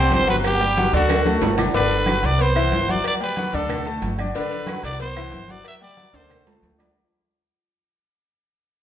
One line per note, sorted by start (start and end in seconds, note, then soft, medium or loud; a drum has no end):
0.00 0.22 C3 loud
0.00 0.22 C4 medium
0.00 0.12 C5 loud
0.00 0.22 C5 medium
0.10 0.87 G1 loud
0.10 0.28 C5 loud
0.10 cowbell medium
0.10 high conga medium
0.10 low timbale medium
0.10 low agogo medium
0.10 maracas soft
0.27 0.54 F#3 medium
0.27 0.54 F#4 medium
0.27 0.37 B4 medium
0.27 0.54 F#5 medium
0.27 cowbell medium
0.27 high conga medium
0.27 maracas medium
0.44 0.91 G4 loud
0.44 cowbell loud
0.44 high conga soft
0.44 low agogo loud
0.44 claves medium
0.44 maracas medium
0.60 0.74 G3 medium
0.60 0.74 G4 medium
0.60 0.74 G5 medium
0.60 high conga soft
0.60 maracas soft
0.77 0.90 F#3 medium
0.77 0.90 F#4 medium
0.77 0.91 F#5 medium
0.77 cowbell medium
0.77 high conga loud
0.77 low agogo medium
0.77 maracas soft
0.93 1.38 D2 loud
0.93 1.20 D3 loud
0.93 1.20 D4 medium
0.93 1.55 F#4 medium
0.93 1.20 D5 medium
0.93 cowbell medium
0.93 high conga soft
0.93 maracas medium
1.09 cowbell loud
1.09 high conga medium
1.09 high timbale medium
1.09 low agogo loud
1.09 claves medium
1.09 maracas loud
1.25 1.52 A3 medium
1.25 1.53 A4 medium
1.25 1.53 A5 medium
1.25 high bongo medium
1.25 high conga medium
1.25 high timbale medium
1.25 low agogo medium
1.25 maracas soft
1.41 1.70 G1 loud
1.41 cowbell medium
1.41 low bongo loud
1.41 low timbale loud
1.41 low agogo medium
1.41 maracas soft
1.58 1.71 D4 medium
1.58 1.72 D5 medium
1.58 1.72 D6 medium
1.58 low bongo loud
1.58 low conga medium
1.58 low timbale medium
1.58 low agogo loud
1.58 claves medium
1.58 maracas medium
1.74 2.19 G1 medium
1.74 2.01 D3 medium
1.74 2.01 D4 medium
1.74 2.27 B4 loud
1.74 2.01 D5 loud
1.74 cowbell loud
1.74 high conga soft
1.74 low agogo medium
1.91 cowbell medium
1.91 high conga soft
2.06 2.34 F#3 medium
2.06 2.34 F#4 medium
2.06 2.34 F#5 medium
2.06 cowbell medium
2.06 high conga loud
2.06 low agogo loud
2.06 claves medium
2.22 2.68 C2 loud
2.22 2.43 D5 loud
2.22 cowbell medium
2.22 high conga soft
2.22 low agogo loud
2.39 2.53 B3 medium
2.39 2.53 B4 medium
2.39 2.92 C5 loud
2.39 2.53 B5 medium
2.39 cowbell loud
2.39 high conga soft
2.56 2.82 E3 loud
2.56 2.83 E4 loud
2.56 2.83 E5 loud
2.56 low agogo loud
2.56 claves medium
2.71 3.00 G1 loud
2.71 cowbell medium
2.71 high conga medium
2.71 low timbale medium
2.71 low agogo medium
2.88 3.15 F#3 medium
2.88 3.15 F#4 medium
2.88 3.06 D5 loud
2.88 3.15 F#5 medium
2.88 cowbell medium
2.88 high conga medium
3.04 3.14 D5 loud
3.04 cowbell loud
3.04 high conga soft
3.04 low agogo loud
3.04 claves medium
3.20 3.34 G3 medium
3.20 3.34 G4 medium
3.20 3.57 B4 loud
3.20 3.34 G5 medium
3.20 high conga soft
3.36 3.51 F#3 medium
3.36 3.51 F#4 medium
3.36 3.51 F#5 medium
3.36 cowbell medium
3.36 high conga loud
3.36 low agogo loud
3.53 3.99 D2 loud
3.53 3.80 D3 medium
3.53 3.80 D4 medium
3.53 3.87 A4 medium
3.53 3.81 D5 loud
3.53 cowbell medium
3.53 high conga soft
3.69 cowbell loud
3.69 high conga soft
3.69 low conga medium
3.69 low agogo loud
3.69 claves medium
3.85 4.13 A3 medium
3.85 4.13 A4 medium
3.85 4.13 A5 medium
3.85 high conga soft
3.85 low agogo medium
4.01 4.31 G1 loud
4.01 cowbell medium
4.01 high conga medium
4.01 low timbale medium
4.01 low agogo medium
4.18 4.33 D4 medium
4.18 4.33 D5 medium
4.18 4.33 D6 medium
4.18 high conga medium
4.18 low agogo loud
4.18 claves medium
4.34 4.62 D3 loud
4.34 4.62 D4 medium
4.34 4.81 B4 loud
4.34 4.62 D5 medium
4.34 cowbell loud
4.34 high conga soft
4.34 low agogo loud
4.34 maracas medium
4.51 cowbell medium
4.51 high conga soft
4.51 maracas soft
4.67 4.94 F#3 medium
4.67 4.95 F#4 medium
4.67 4.95 F#5 medium
4.67 cowbell medium
4.67 high conga loud
4.67 low agogo loud
4.67 claves medium
4.67 maracas soft
4.83 5.29 C2 loud
4.83 5.00 D5 loud
4.83 cowbell medium
4.83 high conga soft
4.83 low agogo loud
4.83 maracas medium
5.00 5.14 B3 medium
5.00 5.14 B4 medium
5.00 5.52 C5 loud
5.00 5.14 B5 medium
5.00 cowbell loud
5.00 high conga soft
5.00 maracas loud
5.16 5.43 E3 loud
5.16 5.43 E4 loud
5.16 5.43 E5 loud
5.16 high conga soft
5.16 low agogo loud
5.16 claves medium
5.32 5.61 G1 loud
5.32 cowbell medium
5.32 high conga medium
5.32 low agogo medium
5.32 maracas soft
5.48 5.76 F#3 medium
5.48 5.76 F#4 medium
5.48 5.66 D5 loud
5.48 5.76 F#5 medium
5.48 cowbell medium
5.48 high conga medium
5.48 maracas medium
5.64 5.75 E5 loud
5.64 cowbell loud
5.64 high conga soft
5.64 low agogo loud
5.64 claves medium
5.64 maracas medium
5.81 5.95 G3 medium
5.81 5.95 G4 medium
5.81 6.17 D5 loud
5.81 5.95 G5 medium
5.81 high conga soft
5.81 maracas soft
5.97 6.11 F#3 medium
5.97 6.11 F#4 medium
5.97 6.11 F#5 medium
5.97 cowbell medium
5.97 high conga loud
5.97 low agogo medium
6.13 6.59 D2 loud
6.13 6.40 D3 loud
6.13 6.40 D4 loud
6.13 6.47 C5 loud
6.13 6.41 D5 loud
6.13 cowbell medium
6.13 high conga soft
6.13 high timbale loud
6.13 maracas medium
6.30 cowbell loud
6.30 high conga soft
6.30 low conga medium
6.30 high timbale medium
6.30 low agogo loud
6.30 claves medium
6.30 maracas loud
6.46 6.73 A3 medium
6.46 6.73 A4 medium
6.46 6.73 A5 medium
6.46 high conga soft
6.46 low timbale loud
6.46 low agogo medium
6.62 6.91 D2 loud
6.62 cowbell medium
6.62 high conga medium
6.62 low timbale medium
6.62 low agogo medium
6.62 maracas soft
6.78 6.92 D4 medium
6.78 6.92 D5 medium
6.78 6.92 D6 medium
6.78 high conga medium
6.78 low timbale loud
6.78 low agogo loud
6.78 claves medium
6.78 maracas medium